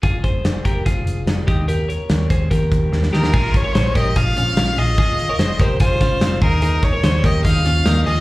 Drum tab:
CC |----------------|----------------|x---------------|----------------|
HH |x-x-x-x-x-x-x-x-|x-x-x-x-x-x-----|--x-x-x-x-x-x-o-|x-x-x-x-x-x-x-o-|
SD |----o-------o---|----o-------oooo|----o-------o---|----o---o---o---|
BD |o-o---o-o-----o-|------o-o-o-----|o-o---o-o-------|o-----o-o-o---o-|

CC |----------------|
HH |x-x-x-x-x-x-x-o-|
SD |----o-------o---|
BD |--o---o-o-------|